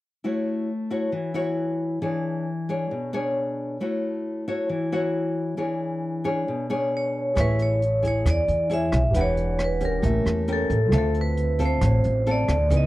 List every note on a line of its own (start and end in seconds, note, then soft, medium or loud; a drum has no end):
0.24 1.11 A3 medium
0.24 0.68 E4 soft
0.24 0.68 F#4 soft
0.24 0.69 C#5 soft
0.90 1.32 E4 soft
0.90 1.32 F#4 medium
0.90 1.32 C#5 medium
1.12 1.99 E3 medium
1.34 1.98 E4 medium
1.34 1.98 F#4 medium
1.34 1.99 C#5 medium
2.02 2.89 E3 medium
2.02 2.46 D4 soft
2.02 2.46 G#4 soft
2.02 2.47 C#5 soft
2.69 3.10 D4 medium
2.69 3.10 G#4 medium
2.69 3.10 C#5 medium
2.91 3.78 B2 medium
3.13 3.76 D4 medium
3.13 3.77 G#4 medium
3.13 3.77 C#5 medium
3.80 4.67 A3 medium
3.80 4.44 E4 soft
3.80 4.44 F#4 soft
3.80 4.44 C#5 soft
4.48 4.88 E4 medium
4.48 4.88 F#4 medium
4.48 4.89 C#5 medium
4.69 5.56 E3 medium
4.92 5.55 E4 medium
4.92 5.55 F#4 medium
4.92 5.55 C#5 medium
5.57 6.45 E3 medium
5.57 6.21 D4 soft
5.57 6.21 G#4 soft
5.57 6.22 C#5 soft
6.24 6.66 D4 soft
6.24 6.66 G#4 medium
6.24 6.66 C#5 medium
6.48 7.35 B2 medium
6.70 7.33 D4 medium
6.70 7.33 G#4 medium
6.70 7.33 C#5 medium
6.97 7.40 C#5 medium
7.34 8.21 A1 medium
7.34 8.23 A3 soft
7.34 7.80 E4 soft
7.34 9.09 G#4 soft
7.34 7.80 G#4 soft
7.34 9.11 B4 soft
7.34 7.80 C#5 medium
7.34 kick medium
7.34 cross-stick medium
7.34 closed hi-hat medium
7.38 7.59 B4 medium
7.38 9.13 E5 medium
7.38 9.12 C#6 soft
7.59 8.02 C#5 medium
7.59 closed hi-hat soft
7.82 closed hi-hat soft
8.02 8.66 E4 medium
8.02 8.66 G#4 medium
8.02 kick soft
8.02 closed hi-hat soft
8.08 8.28 C#5 medium
8.25 8.46 E2 medium
8.25 9.12 E3 soft
8.25 kick medium
8.25 cross-stick medium
8.25 closed hi-hat medium
8.30 8.69 D5 medium
8.48 8.89 E2 medium
8.48 closed hi-hat soft
8.70 8.98 E4 medium
8.70 8.99 G#4 medium
8.70 8.99 C#5 medium
8.70 9.18 E5 medium
8.70 closed hi-hat soft
8.92 9.14 B1 loud
8.92 kick soft
8.92 cross-stick medium
8.92 closed hi-hat soft
9.11 9.99 E1 medium
9.11 10.01 E3 soft
9.11 9.98 G4 soft
9.11 9.59 G4 soft
9.11 10.01 B4 soft
9.11 kick medium
9.11 closed hi-hat medium
9.15 9.59 D4 soft
9.15 10.02 D4 soft
9.15 9.59 B4 medium
9.15 10.03 F#5 medium
9.21 9.63 C#5 medium
9.37 closed hi-hat soft
9.59 cross-stick medium
9.59 closed hi-hat soft
9.64 9.84 B4 medium
9.81 10.44 C#4 medium
9.81 10.44 G4 medium
9.81 kick soft
9.81 closed hi-hat soft
9.85 10.52 A#4 medium
9.99 10.24 A1 medium
9.99 10.90 A3 medium
9.99 10.89 A#3 soft
9.99 10.89 G4 soft
9.99 kick medium
9.99 closed hi-hat medium
10.04 10.91 C#5 soft
10.04 10.92 E5 soft
10.26 10.67 E2 medium
10.26 cross-stick medium
10.26 closed hi-hat soft
10.47 10.77 C#4 medium
10.47 10.77 G4 medium
10.47 10.77 A#4 medium
10.47 closed hi-hat soft
10.53 10.96 A4 medium
10.70 10.92 A1 medium
10.70 kick soft
10.70 closed hi-hat soft
10.88 11.77 D2 medium
10.88 11.79 D3 soft
10.88 11.55 C4 soft
10.88 12.64 F4 soft
10.88 12.66 A4 soft
10.88 cross-stick medium
10.88 closed hi-hat medium
10.92 12.67 C4 soft
10.92 11.56 F4 soft
10.92 11.55 A4 medium
10.92 12.68 E5 medium
10.92 kick medium
10.98 11.18 A4 medium
11.14 closed hi-hat soft
11.21 11.60 B4 medium
11.37 closed hi-hat soft
11.59 12.22 C4 medium
11.59 12.22 F4 medium
11.59 12.22 A4 medium
11.59 kick soft
11.59 closed hi-hat soft
11.65 12.31 C5 medium
11.81 12.02 A1 medium
11.81 12.69 A2 soft
11.81 kick medium
11.81 cross-stick medium
11.81 closed hi-hat medium
12.04 12.46 A1 medium
12.04 closed hi-hat soft
12.26 12.55 C4 medium
12.26 12.55 F4 medium
12.26 12.55 A4 medium
12.26 closed hi-hat soft
12.31 12.74 D5 medium
12.48 12.70 D2 loud
12.48 kick soft
12.48 cross-stick medium
12.48 closed hi-hat soft
12.70 12.87 C#2 medium
12.70 12.87 C#3 soft
12.70 12.87 E3 soft
12.70 12.87 B3 medium
12.70 12.87 D#4 soft
12.70 12.87 G#4 soft
12.70 12.87 B4 soft
12.70 kick medium
12.70 closed hi-hat medium
12.74 12.87 D#5 soft
12.74 12.87 D#5 medium